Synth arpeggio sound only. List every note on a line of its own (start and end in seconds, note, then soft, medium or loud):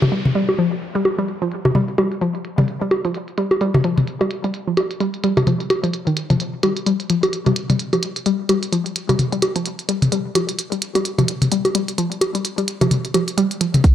0.12 0.17 G3 medium
0.35 0.43 G3 medium
0.59 0.67 F3 medium
0.95 0.99 G3 medium
1.19 1.25 G3 medium
1.42 1.48 F3 medium
1.75 1.80 G3 medium
1.98 2.06 G3 medium
2.21 2.30 F3 medium
2.58 2.62 G3 medium
2.81 2.87 G3 medium
3.05 3.11 F3 medium
3.38 3.43 G3 medium
3.61 3.69 G3 medium
3.84 3.92 F3 medium
4.21 4.25 G3 medium
4.44 4.50 G3 medium
4.67 4.73 F3 medium
5.00 5.06 G3 medium
5.24 5.32 G3 medium
5.47 5.55 F3 medium
5.84 5.90 F3 medium
6.07 6.09 D#3 medium
6.30 6.34 F3 medium
6.63 6.69 G3 medium
6.86 6.95 G3 medium
7.10 7.18 F3 medium
7.47 7.51 G3 medium
7.70 7.76 G3 medium
7.93 7.99 F3 medium
8.26 8.32 G3 medium
8.49 8.58 G3 medium
8.72 8.81 F3 medium
9.09 9.13 G3 medium
9.32 9.38 G3 medium
9.56 9.62 F3 medium
9.89 9.94 G3 medium
10.12 10.20 G3 medium
10.35 10.44 F3 medium
10.72 10.76 G3 medium
10.95 11.01 G3 medium
11.19 11.25 F3 medium
11.52 11.57 G3 medium
11.75 11.83 G3 medium
11.98 12.06 F3 medium
12.35 12.39 G3 medium
12.58 12.64 G3 medium
12.81 12.87 F3 medium
13.14 13.18 F3 medium
13.38 13.46 G3 loud
13.61 13.64 F3 medium
13.84 13.92 F3 medium